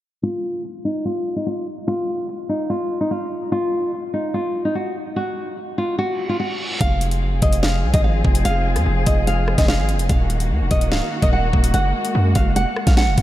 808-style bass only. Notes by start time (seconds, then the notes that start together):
6.81 F1
7.22 F#1
7.32 F1
7.42 F1
7.83 C2
7.94 G#1
8.25 F1
8.45 F1
8.76 F2
8.86 F1
9.07 F1
9.58 F1
9.79 G#1
9.94 F1
10.09 D#1
10.51 D#2
10.61 D#1
10.71 D#1
10.92 C#1
11.22 D#1
11.53 D#1
11.74 F#1
12.15 F#2
12.36 F#1
12.56 F1
12.87 A#1
13.07 F1
13.18 F#1